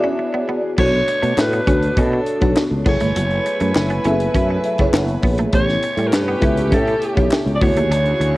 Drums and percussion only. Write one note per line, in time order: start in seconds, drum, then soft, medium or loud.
0.78 kick loud
0.78 crash loud
1.08 closed hi-hat medium
1.23 closed hi-hat medium
1.38 snare loud
1.38 clap medium
1.53 closed hi-hat soft
1.67 kick medium
1.67 closed hi-hat medium
1.83 closed hi-hat medium
1.97 kick medium
1.97 closed hi-hat medium
2.26 closed hi-hat medium
2.41 kick medium
2.41 closed hi-hat soft
2.56 snare loud
2.56 clap medium
2.86 kick loud
2.86 crash medium
3.00 closed hi-hat medium
3.16 closed hi-hat loud
3.31 closed hi-hat soft
3.46 closed hi-hat medium
3.60 closed hi-hat medium
3.75 snare loud
3.75 clap medium
3.90 closed hi-hat soft
4.04 closed hi-hat medium
4.20 closed hi-hat medium
4.34 kick medium
4.34 closed hi-hat medium
4.64 closed hi-hat medium
4.78 kick medium
4.78 closed hi-hat soft
4.94 snare loud
4.94 clap loud
5.08 closed hi-hat soft
5.23 kick loud
5.23 open hi-hat medium
5.38 closed hi-hat medium
5.53 kick loud
5.53 closed hi-hat loud
5.69 snare soft
5.83 closed hi-hat medium
5.97 closed hi-hat medium
6.13 snare loud
6.13 clap medium
6.42 kick medium
6.42 closed hi-hat medium
6.57 closed hi-hat medium
6.72 kick medium
6.72 closed hi-hat medium
6.87 closed hi-hat soft
7.02 closed hi-hat medium
7.17 kick medium
7.17 closed hi-hat soft
7.31 snare loud
7.31 clap medium
7.47 closed hi-hat soft
7.61 kick loud
7.61 open hi-hat medium
7.77 closed hi-hat medium
7.92 closed hi-hat loud
8.06 closed hi-hat soft
8.21 closed hi-hat medium